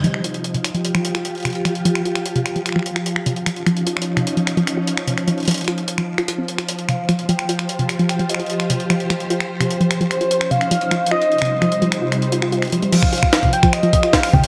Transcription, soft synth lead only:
X:1
M:4/4
L:1/8
Q:1/4=149
K:Dblyd
V:1 name="Soft synth lead"
z8 | z8 | z8 | z8 |
z2 f2 g3 z | g e2 z4 z | z2 c2 f3 e- | e6- e z |
f3 g e2 f g |]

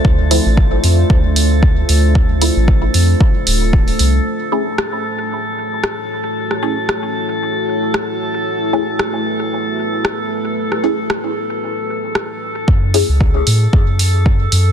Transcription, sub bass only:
X:1
M:4/4
L:1/16
Q:"Swing 16ths" 1/4=114
K:F#m
V:1 name="Sub bass" clef=bass
D,,3 A,,,3 =F,, z D,,6 D,,2- | D,,3 A,,,3 =F,, z3 D,,,4 =C,, z | z16 | z16 |
z16 | z16 | F,,3 C,,3 A,, z F,,6 F,,2 |]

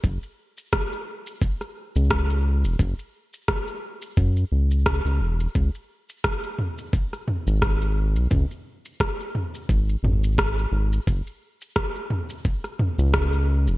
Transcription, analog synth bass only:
X:1
M:4/4
L:1/16
Q:"Swing 16ths" 1/4=87
K:F#dor
V:1 name="Analog synth bass" clef=bass
F,,, z8 z2 C,,4 E,,, | F,,, z6 z F,,2 C,,2 C,, C,, E,,,2 | C,, z8 z2 G,,,4 B,,, | C,, z6 z G,,,2 G,,,4 G,,,2 |
F,,, z8 z2 C,,4 E,,, |]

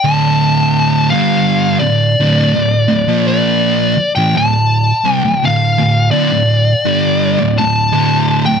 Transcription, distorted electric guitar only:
X:1
M:4/4
L:1/16
Q:"Swing" 1/4=56
K:Dm
V:1 name="Distorted electric guitar" clef=bass
[D,,A,,D,]4 [G,,D,G,]2 [D,,A,,]2 [D,,A,,] [D,,A,,] [D,,A,,] [B,,F,B,]3 z [A,,E,] | [D,,A,,]2 [C,G,] [D,,A,,] [D,,A,,] [D,,A,,] [D,,A,,] [D,,A,,]2 [G,,D,G,]2 [D,,A,,] [D,,A,,] [D,,A,,D,]2 [D,,A,,] |]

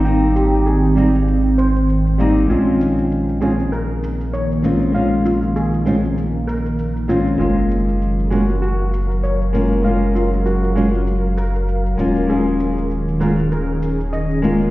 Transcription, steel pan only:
X:1
M:4/4
L:1/8
Q:"Swing 16ths" 1/4=98
K:Bbdor
V:1 name="Steel pan"
g G A z2 c z2 | F z2 A B z d z | f F A z2 B z F | F z2 _G G z d z |
f F _G z2 B z2 | A z2 B B z e z |]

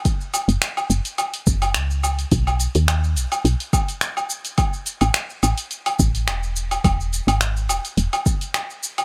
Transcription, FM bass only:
X:1
M:4/4
L:1/16
Q:"Swing 16ths" 1/4=106
K:F#dor
V:1 name="FM bass" clef=bass
z3 F,,, z2 F,,, z3 F,,,2 C,,4 | B,,,3 D,,3 B,,, z B,,, z6 z | z3 A,,, z2 A,,, z3 A,,,2 E,,,4 | E,,,3 G,,,3 E,,, z E,,, z6 z |]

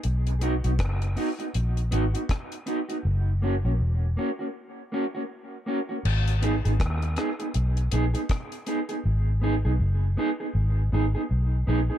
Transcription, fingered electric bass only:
X:1
M:4/4
L:1/16
Q:"Swing 16ths" 1/4=80
K:G#m
V:1 name="Fingered electric bass" clef=bass
B,,,3 B,,, F,,,2 z2 A,,,2 G,,, z4 z | F,,,3 A,,, E,,,2 z8 z2 | G,,,3 G,,, D,,2 z2 B,,,2 A,,, z4 z | G,,,3 B,,, F,,,2 z2 G,,,2 G,,, z B,,,2 A,,, z |]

